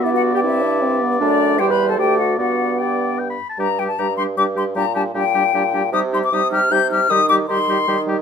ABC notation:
X:1
M:3/4
L:1/16
Q:1/4=154
K:G
V:1 name="Flute"
e f2 g e6 z2 | d4 g b2 a g2 f2 | f4 g4 z4 | [K:Gm] b2 g a b2 c'2 d'2 c'2 |
b2 a2 g8 | e'2 c' d' e'2 f'2 g'2 f'2 | e'2 d'2 c'8 |]
V:2 name="Oboe"
d12- | d4 c4 d4 | d4 d4 g b2 a | [K:Gm] G2 G2 G2 G2 G2 G2 |
G2 G2 G2 G2 G2 G2 | G2 G2 G2 G2 G2 G2 | G2 G2 G2 G2 G2 G2 |]
V:3 name="Clarinet"
E F2 G E6 z2 | D4 G B2 A G2 F2 | F4 G4 z4 | [K:Gm] D2 D2 D2 D2 D2 D2 |
D2 D2 D2 D2 D2 D2 | E2 E2 E2 E2 E2 E2 | E2 E2 E2 E2 E2 E2 |]
V:4 name="French horn" clef=bass
B,4 C2 D2 C2 B,2 | A,4 G,4 A,4 | B,8- B,2 z2 | [K:Gm] G,2 G,2 G,2 G,2 G,2 G,2 |
G,2 G,2 G,2 G,2 G,2 G,2 | G,2 G,2 G,2 G,2 G,2 G,2 | G,2 G,2 G,2 G,2 G,2 G,2 |]
V:5 name="Bassoon" clef=bass
G,,12 | F,,4 E,,4 D,,4 | G,,8- G,,2 z2 | [K:Gm] G,,4 G,,4 G,,4 |
B,,4 B,,4 B,,4 | C,4 C,4 C,4 | E,4 E,4 E,4 |]